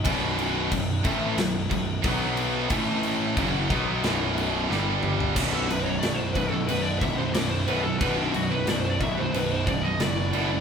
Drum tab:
CC |x-x-x-x-x-x-x-x-|x-x-x-x-x-x-----|x-x-x-x-x-x-x-x-|x-x-x-x-x-x-x-x-|
SD |--------o-------|--------o---o---|----o-------o---|----o-------o---|
T2 |----------------|--------------o-|----------------|----------------|
FT |----------------|---------------o|----------------|----------------|
BD |o---o-o---o-o---|o---o-o---------|o-----o---o-----|o-----o---o-----|